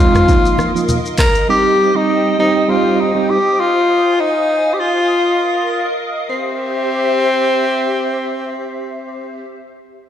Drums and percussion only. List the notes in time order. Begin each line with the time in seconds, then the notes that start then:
0.15 cross-stick, mid tom, shaker
0.28 kick, shaker
0.45 shaker
0.58 cross-stick, high conga, shaker
0.76 shaker
0.89 low conga, shaker
1.05 shaker
1.18 kick, cross-stick, clap, open hi-hat, shaker
1.35 shaker